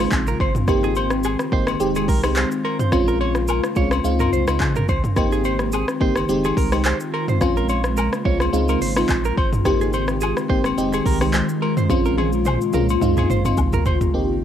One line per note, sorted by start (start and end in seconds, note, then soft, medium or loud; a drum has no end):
0.00 0.67 C#3 medium
0.00 0.19 G#3 medium
0.00 6.25 G#3 medium
0.00 0.20 C4 medium
0.00 2.89 C4 medium
0.00 0.20 D#4 medium
0.00 0.20 F4 medium
0.00 0.65 F4 medium
0.00 high agogo medium
0.11 0.35 A#1 loud
0.11 kick loud
0.11 clap loud
0.11 low woodblock medium
0.11 shaker medium
0.27 0.38 A#4 medium
0.27 shaker medium
0.40 0.63 G#1 medium
0.40 0.53 C5 medium
0.40 kick medium
0.40 high agogo medium
0.55 mid tom loud
0.55 shaker medium
0.68 1.36 G#1 loud
0.68 2.90 D#3 medium
0.68 1.20 A#3 medium
0.68 1.20 C4 medium
0.68 1.20 D#4 medium
0.68 1.79 G4 medium
0.68 1.20 G4 loud
0.68 kick loud
0.68 cross-stick medium
0.68 high agogo medium
0.68 shaker medium
0.83 0.94 G#4 medium
0.83 shaker soft
0.95 1.09 C5 medium
0.95 high agogo medium
0.95 shaker soft
1.11 cross-stick medium
1.11 shaker soft
1.24 1.37 G#4 medium
1.24 high agogo medium
1.24 low woodblock medium
1.24 shaker medium
1.39 cross-stick medium
1.39 shaker soft
1.52 1.75 G1 medium
1.52 1.74 A#3 medium
1.52 1.74 C4 medium
1.52 1.74 D#4 medium
1.52 1.74 G4 medium
1.52 1.65 C5 medium
1.52 kick medium
1.67 cross-stick medium
1.67 high agogo medium
1.67 shaker medium
1.80 2.10 F1 loud
1.80 2.20 G#3 medium
1.80 2.20 C4 medium
1.80 2.20 D#4 medium
1.80 5.13 F4 medium
1.80 2.20 G4 loud
1.80 shaker medium
1.95 2.06 G#4 medium
1.95 high agogo medium
1.95 shaker medium
2.08 2.44 C2 loud
2.08 2.21 A#4 medium
2.08 kick loud
2.08 open hi-hat medium
2.08 shaker medium
2.23 2.44 G#3 medium
2.23 2.44 C4 medium
2.23 2.44 D#4 medium
2.23 2.44 G4 medium
2.23 cross-stick loud
2.23 high agogo medium
2.23 shaker medium
2.36 2.49 C5 medium
2.36 clap loud
2.36 low woodblock medium
2.36 shaker medium
2.51 shaker medium
2.65 2.77 A#4 medium
2.65 high agogo medium
2.79 2.90 C5 medium
2.79 mid tom loud
2.79 shaker medium
2.92 3.60 A#1 loud
2.92 4.03 C#3 medium
2.92 3.44 G#3 medium
2.92 4.03 A#3 medium
2.92 3.44 C4 medium
2.92 3.44 C#4 medium
2.92 3.44 F4 loud
2.92 kick loud
2.92 cross-stick medium
2.92 high agogo medium
2.92 shaker medium
3.08 3.18 A#4 medium
3.08 shaker soft
3.21 3.33 C#5 medium
3.21 high agogo medium
3.35 cross-stick medium
3.35 shaker soft
3.48 3.61 A#4 medium
3.48 high agogo medium
3.48 low woodblock medium
3.48 shaker medium
3.64 cross-stick medium
3.64 shaker soft
3.76 4.00 C2 loud
3.76 3.98 G#3 medium
3.76 3.98 C4 medium
3.76 3.98 C#4 medium
3.76 3.98 F4 medium
3.76 3.89 C#5 medium
3.76 kick medium
3.76 shaker medium
3.91 cross-stick loud
3.91 high agogo medium
3.91 shaker medium
4.04 4.28 C#2 loud
4.04 5.15 C#3 medium
4.04 4.44 G#3 medium
4.04 4.44 C4 medium
4.04 6.26 C4 medium
4.04 4.44 D#4 medium
4.04 4.44 F4 loud
4.04 shaker medium
4.20 4.30 A#4 medium
4.20 mid tom medium
4.20 high agogo medium
4.20 shaker medium
4.32 4.45 C2 medium
4.32 4.45 C5 medium
4.32 shaker medium
4.48 4.58 C#2 medium
4.48 4.68 G#3 medium
4.48 4.68 C4 medium
4.48 4.68 D#4 medium
4.48 4.68 F4 medium
4.48 cross-stick loud
4.48 high agogo medium
4.48 shaker medium
4.60 4.84 C#3 loud
4.60 kick loud
4.60 clap loud
4.60 low woodblock medium
4.60 shaker medium
4.76 4.86 A#4 medium
4.76 mid tom medium
4.76 shaker medium
4.88 5.02 C#2 loud
4.88 5.01 C5 medium
4.88 kick loud
4.88 high agogo medium
4.88 shaker medium
5.04 mid tom loud
5.04 shaker medium
5.16 5.84 G#1 loud
5.16 7.39 D#3 medium
5.16 5.68 A#3 medium
5.16 5.69 C4 medium
5.16 5.69 D#4 medium
5.16 6.28 G4 medium
5.16 5.69 G4 loud
5.16 kick loud
5.16 cross-stick medium
5.16 high agogo medium
5.16 shaker medium
5.32 5.42 G#4 medium
5.32 shaker soft
5.44 5.57 C5 medium
5.44 high agogo medium
5.44 shaker soft
5.59 cross-stick medium
5.59 shaker soft
5.72 5.85 G#4 medium
5.72 high agogo medium
5.72 low woodblock medium
5.72 shaker medium
5.88 cross-stick medium
5.88 shaker soft
6.00 6.24 G1 medium
6.00 6.22 A#3 medium
6.00 6.22 C4 medium
6.00 6.23 D#4 medium
6.00 6.23 G4 medium
6.00 6.13 C5 medium
6.00 kick medium
6.16 cross-stick medium
6.16 high agogo medium
6.16 shaker medium
6.29 6.52 F1 loud
6.29 6.68 G#3 medium
6.29 10.73 G#3 medium
6.29 6.69 C4 medium
6.29 7.40 C4 medium
6.29 6.69 D#4 medium
6.29 8.51 F4 medium
6.29 6.69 G4 loud
6.29 shaker medium
6.44 6.55 G#4 medium
6.44 high agogo medium
6.44 shaker medium
6.57 6.93 C2 loud
6.57 6.69 A#4 medium
6.57 kick loud
6.57 open hi-hat medium
6.57 shaker medium
6.72 6.92 G#3 medium
6.72 6.92 C4 medium
6.72 6.93 D#4 medium
6.72 6.93 G4 medium
6.72 cross-stick medium
6.72 high agogo medium
6.72 shaker medium
6.85 6.97 C5 medium
6.85 clap loud
6.85 low woodblock medium
6.85 shaker medium
7.00 shaker medium
7.14 7.26 A#4 medium
7.14 high agogo medium
7.28 7.39 C5 medium
7.28 mid tom loud
7.28 shaker medium
7.41 8.09 A#1 loud
7.41 9.63 C#3 medium
7.41 7.93 G#3 medium
7.41 8.52 A#3 medium
7.41 7.93 C4 medium
7.41 7.93 C#4 medium
7.41 7.93 F4 loud
7.41 kick loud
7.41 cross-stick medium
7.41 high agogo medium
7.41 shaker medium
7.57 7.67 A#4 medium
7.57 shaker soft
7.69 7.81 C#5 medium
7.69 high agogo medium
7.69 shaker soft
7.84 cross-stick medium
7.84 shaker soft
7.97 8.10 A#4 medium
7.97 high agogo medium
7.97 low woodblock medium
7.97 shaker medium
8.13 cross-stick medium
8.13 shaker soft
8.25 8.49 C2 medium
8.25 8.47 G#3 medium
8.25 8.47 C4 medium
8.25 8.47 C#4 medium
8.25 8.47 F4 medium
8.25 8.38 C#5 medium
8.25 kick medium
8.40 cross-stick medium
8.40 high agogo medium
8.40 shaker medium
8.53 8.76 C#2 loud
8.53 8.93 G#3 medium
8.53 8.93 C4 medium
8.53 11.86 C4 medium
8.53 8.93 D#4 medium
8.53 9.64 F4 medium
8.53 8.93 F4 loud
8.53 shaker medium
8.68 8.79 A#4 medium
8.68 high agogo medium
8.68 shaker medium
8.81 9.04 G#1 medium
8.81 8.94 C5 medium
8.81 open hi-hat medium
8.81 shaker medium
8.96 9.17 G#3 medium
8.96 9.17 C4 medium
8.96 9.17 D#4 medium
8.96 9.17 F4 medium
8.96 cross-stick loud
8.96 high agogo medium
8.96 shaker medium
9.09 9.32 A#1 medium
9.09 kick loud
9.09 clap loud
9.09 low woodblock medium
9.09 shaker medium
9.25 9.35 A#4 medium
9.25 shaker medium
9.38 9.61 G#1 medium
9.38 9.50 C5 medium
9.38 kick loud
9.38 high agogo medium
9.53 mid tom loud
9.53 shaker medium
9.65 10.33 G#1 loud
9.65 11.87 D#3 medium
9.65 10.17 A#3 medium
9.65 10.17 C4 medium
9.65 10.17 D#4 medium
9.65 10.76 G4 medium
9.65 10.17 G4 loud
9.65 kick loud
9.65 cross-stick medium
9.65 high agogo medium
9.65 shaker medium
9.81 9.91 G#4 medium
9.81 shaker soft
9.93 10.06 C5 medium
9.93 high agogo medium
9.93 shaker soft
10.08 cross-stick medium
10.08 shaker soft
10.21 10.34 G#4 medium
10.21 high agogo medium
10.21 low woodblock medium
10.21 shaker medium
10.37 cross-stick medium
10.37 shaker soft
10.49 10.73 G1 loud
10.49 10.71 A#3 medium
10.49 10.71 C4 medium
10.49 10.71 D#4 medium
10.49 10.71 G4 medium
10.49 10.62 C5 medium
10.49 kick medium
10.64 cross-stick medium
10.64 high agogo medium
10.64 shaker medium
10.77 11.01 F1 loud
10.77 14.10 G#3 medium
10.77 11.17 G#3 medium
10.77 11.17 C4 medium
10.77 11.17 D#4 medium
10.77 14.10 F4 medium
10.77 11.17 G4 loud
10.77 shaker medium
10.93 11.03 G#4 medium
10.93 high agogo medium
10.93 shaker medium
11.06 11.42 C2 loud
11.06 11.18 A#4 medium
11.06 kick loud
11.06 open hi-hat medium
11.06 shaker medium
11.21 11.41 G#3 medium
11.21 11.41 C4 medium
11.21 11.41 D#4 medium
11.21 11.42 G4 medium
11.21 cross-stick medium
11.21 high agogo medium
11.21 shaker medium
11.33 11.46 C5 medium
11.33 clap loud
11.33 low woodblock medium
11.33 shaker medium
11.49 shaker medium
11.62 11.74 A#4 medium
11.62 high agogo medium
11.77 11.87 C5 medium
11.77 mid tom loud
11.77 shaker medium
11.90 12.57 A#1 loud
11.90 13.01 C#3 medium
11.90 12.42 G#3 medium
11.90 13.01 A#3 medium
11.90 12.42 C4 medium
11.90 12.42 C#4 medium
11.90 12.42 F4 loud
11.90 kick loud
11.90 high tom medium
11.90 high agogo medium
11.90 shaker medium
12.05 12.15 A#4 medium
12.05 shaker soft
12.18 12.30 G#4 medium
12.18 high tom medium
12.18 high agogo medium
12.32 shaker soft
12.45 12.58 C5 medium
12.45 mid tom medium
12.45 high agogo medium
12.45 low woodblock medium
12.45 shaker medium
12.61 shaker soft
12.73 12.97 C2 medium
12.73 12.95 G#3 medium
12.73 12.95 C4 medium
12.73 12.96 C#4 medium
12.73 12.96 F4 medium
12.73 12.86 A#4 medium
12.73 mid tom medium
12.73 shaker medium
12.89 high agogo medium
12.89 shaker medium
13.01 13.25 C#2 loud
13.01 14.13 C#3 medium
13.01 13.41 G#3 loud
13.01 13.41 C4 medium
13.01 14.12 C4 medium
13.01 13.42 D#4 medium
13.01 13.42 F4 loud
13.01 mid tom medium
13.01 shaker medium
13.17 13.27 G#4 medium
13.17 mid tom medium
13.17 high agogo medium
13.17 shaker medium
13.30 13.53 G#1 medium
13.30 13.42 C5 medium
13.30 mid tom medium
13.30 shaker medium
13.45 13.65 G#3 medium
13.45 13.65 C4 medium
13.45 13.65 D#4 medium
13.45 13.66 F4 medium
13.45 mid tom medium
13.45 high agogo medium
13.45 shaker medium
13.57 13.81 A#1 medium
13.57 kick loud
13.57 floor tom loud
13.57 low woodblock medium
13.57 shaker medium
13.73 13.83 A#4 medium
13.73 floor tom medium
13.73 shaker medium
13.85 14.09 G#1 medium
13.85 13.98 C5 medium
13.85 floor tom loud
13.85 high agogo medium
13.85 shaker medium
14.01 floor tom loud
14.01 shaker medium
14.14 14.44 G#1 loud
14.14 14.44 D#3 medium
14.14 14.44 G#3 medium
14.14 14.35 A#3 medium
14.14 14.44 C4 medium
14.14 14.36 C4 medium
14.14 14.36 D#4 medium
14.14 14.44 G4 medium
14.14 14.36 G4 medium